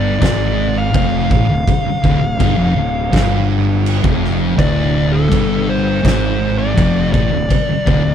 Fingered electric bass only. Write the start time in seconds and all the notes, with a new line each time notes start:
Already playing: G1
0.22 G#1
0.94 F1
1.30 A1
1.50 D1
1.86 muted fingered electric bass stroke
2.04 D1
2.22 D1
2.40 G1
2.58 F1
2.77 D1
3.13 G1
4.04 F1
4.58 D1
5.32 G1
6.04 G#1
6.77 F1
7.14 A1
7.33 D1
7.50 muted fingered electric bass stroke
7.69 muted fingered electric bass stroke
7.87 D1
8.05 D1